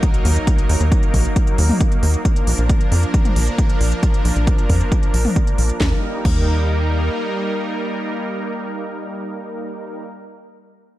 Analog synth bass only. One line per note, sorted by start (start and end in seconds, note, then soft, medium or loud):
0.25 0.39 D#2 medium
0.69 0.76 D#2 loud
0.80 0.94 D#2 medium
1.14 1.27 A#1 loud
1.58 1.72 D#2 medium
2.03 2.16 D#2 medium
2.47 2.54 A#1 loud
2.58 2.72 A#1 medium
2.92 3.05 F2 loud
3.36 3.50 A#1 medium
3.81 3.94 A#1 medium
4.25 4.32 A#1 loud
4.36 4.50 A#1 medium
4.70 4.83 F2 medium
5.14 5.27 A#1 medium
5.58 5.72 A#1 medium
5.81 5.93 D#2 medium
6.25 7.10 D#2 medium